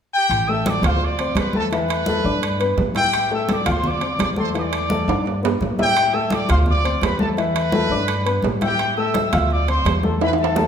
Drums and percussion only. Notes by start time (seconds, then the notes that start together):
0.30 high conga, high timbale
0.48 high conga
0.66 high conga, high timbale, low timbale
0.83 high conga, low conga, high timbale
1.01 high conga
1.18 high conga, high timbale
1.35 high conga, high timbale, low timbale
1.53 high conga
1.71 high conga, high timbale
1.89 high conga, high timbale
2.06 high conga, low timbale
2.42 high conga, high timbale
2.60 high conga, high timbale
2.78 high conga, low timbale
2.95 high conga, high timbale
3.13 high conga, high timbale
3.31 high conga
3.49 high conga, high timbale, low timbale
3.66 high conga, low conga, high timbale
3.84 high conga, low conga
4.01 high conga, high timbale
4.19 high conga, high timbale, low timbale
4.36 high conga
4.54 high conga, high timbale
4.72 high conga, high timbale
4.90 high conga, low timbale
5.09 high timbale
5.26 high conga, low timbale
5.43 high conga, low timbale
5.61 high conga, low timbale
5.79 high conga, low timbale
5.96 high conga, high timbale
6.13 high conga
6.30 high conga, high timbale, low timbale
6.49 high conga, low conga, high timbale
6.66 high conga, low conga
6.84 high conga, high timbale
7.01 high conga, high timbale, low timbale
7.19 high conga
7.37 high conga, high timbale
7.56 high conga, high timbale
7.72 high conga, low timbale
8.08 high conga, high timbale
8.26 high conga, high timbale
8.42 high conga, low timbale
8.61 high conga, high timbale
8.79 high conga, high timbale
8.97 high conga
9.14 high conga, high timbale, low timbale
9.33 high conga, low conga, high timbale
9.51 high conga
9.68 high conga, high timbale
9.85 high conga, high timbale, low timbale
10.03 high conga
10.21 high conga, high timbale
10.33 high timbale
10.38 high conga
10.44 high timbale
10.56 high conga, low timbale